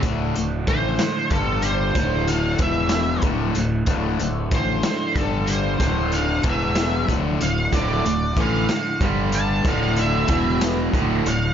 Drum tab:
HH |xxxxxx|xxxxxx|xxxxxx|xxxxxx|
SD |---o--|---o--|---o--|---o--|
BD |o-o-o-|o-o-o-|o-o-o-|o-o-o-|

HH |xxxxxx|xxxxxx|
SD |---o--|---o--|
BD |o-o-o-|o-o-o-|